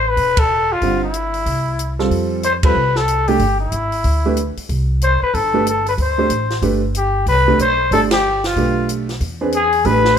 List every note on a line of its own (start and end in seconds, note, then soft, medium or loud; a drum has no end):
0.00 0.14 A1 medium
0.00 0.10 C5 medium
0.09 0.41 B4 medium
0.17 0.78 E1 medium
0.17 kick soft
0.17 open hi-hat soft
0.37 0.74 A4 loud
0.37 kick medium
0.37 ride medium
0.72 1.03 F4 medium
0.81 1.43 G1 medium
0.81 1.01 D3 medium
0.81 1.01 G3 medium
0.81 1.01 C4 medium
0.81 1.01 F4 medium
0.81 kick soft
0.81 open hi-hat soft
1.04 1.96 E4 medium
1.14 closed hi-hat medium
1.34 open hi-hat soft
1.46 2.08 C2 medium
1.46 kick soft
1.46 open hi-hat soft
1.79 closed hi-hat medium
1.99 2.41 G3 medium
1.99 2.41 C4 medium
1.99 2.41 F4 medium
1.99 2.41 A4 medium
1.99 snare soft
2.11 2.72 F2 medium
2.11 kick soft
2.11 open hi-hat soft
2.43 2.53 C5 medium
2.43 closed hi-hat medium
2.63 2.75 G3 medium
2.63 2.75 C4 medium
2.63 2.75 F4 medium
2.63 2.75 A4 medium
2.63 2.98 B4 medium
2.63 kick medium
2.63 ride medium
2.75 3.37 C2 medium
2.96 3.29 A4 medium
2.96 snare soft
3.08 closed hi-hat medium
3.28 3.39 A3 medium
3.28 3.39 D4 medium
3.28 3.60 G4 medium
3.28 3.39 G4 medium
3.28 3.39 A4 medium
3.28 open hi-hat soft
3.39 3.70 G1 medium
3.39 kick soft
3.39 open hi-hat soft
3.60 4.53 E4 medium
3.72 4.02 G#1 medium
3.72 closed hi-hat soft
3.92 open hi-hat soft
4.04 4.53 D2 medium
4.04 kick soft
4.04 open hi-hat soft
4.26 4.36 A3 medium
4.26 4.36 D4 medium
4.26 4.36 G4 medium
4.26 4.37 B4 medium
4.37 closed hi-hat medium
4.57 muted upright bass stroke soft
4.57 open hi-hat soft
4.69 5.18 C2 medium
4.69 kick soft
4.69 open hi-hat soft
5.01 5.21 C5 medium
5.01 closed hi-hat soft
5.22 5.36 B4 medium
5.22 muted upright bass stroke soft
5.34 5.95 G1 medium
5.34 5.66 A4 medium
5.34 kick soft
5.34 open hi-hat soft
5.54 5.65 A3 medium
5.54 5.65 D4 medium
5.54 5.65 G4 medium
5.54 5.65 B4 medium
5.67 5.86 A4 medium
5.67 closed hi-hat medium
5.86 5.93 B4 medium
5.86 open hi-hat soft
5.98 6.28 D2 medium
5.98 6.60 C5 medium
5.98 kick soft
5.98 open hi-hat soft
6.18 6.29 A3 medium
6.18 6.29 D4 medium
6.18 6.29 G4 medium
6.18 6.29 C5 medium
6.30 6.60 A1 medium
6.30 closed hi-hat medium
6.50 snare soft
6.50 open hi-hat soft
6.62 7.23 G1 medium
6.62 6.81 A3 medium
6.62 6.81 D4 medium
6.62 6.81 G4 medium
6.62 6.81 B4 medium
6.62 kick soft
6.62 open hi-hat soft
6.95 7.26 G4 medium
6.95 closed hi-hat medium
7.26 7.57 C2 medium
7.26 7.58 B4 medium
7.26 kick soft
7.26 open hi-hat soft
7.48 7.58 A3 medium
7.48 7.58 D4 medium
7.48 7.58 G4 medium
7.48 7.58 B4 medium
7.58 7.89 B1 medium
7.58 7.90 C5 medium
7.58 closed hi-hat soft
7.91 8.53 G1 medium
7.91 8.10 A3 medium
7.91 8.10 D4 medium
7.91 8.10 G4 medium
7.91 8.01 A4 medium
7.91 8.10 D5 medium
7.91 kick soft
7.91 open hi-hat soft
8.11 8.48 G4 medium
8.11 snare medium
8.11 ride medium
8.44 8.89 F4 medium
8.44 snare medium
8.44 open hi-hat soft
8.56 9.17 B1 medium
8.56 9.05 A3 medium
8.56 9.05 D4 medium
8.56 9.05 G4 soft
8.56 9.05 B4 medium
8.56 kick soft
8.56 open hi-hat soft
8.89 closed hi-hat medium
9.09 snare soft
9.09 open hi-hat soft
9.21 9.82 E2 medium
9.21 kick soft
9.21 open hi-hat soft
9.41 9.52 C4 medium
9.41 9.52 D4 medium
9.41 9.52 G#4 medium
9.41 9.52 B4 medium
9.52 9.87 G#4 medium
9.52 closed hi-hat medium
9.72 open hi-hat soft
9.85 10.19 A1 medium
9.85 10.19 A3 medium
9.85 10.19 D4 medium
9.85 10.19 G4 medium
9.85 10.18 B4 loud
9.85 10.19 B4 medium
9.85 kick soft
9.85 open hi-hat soft
10.05 snare soft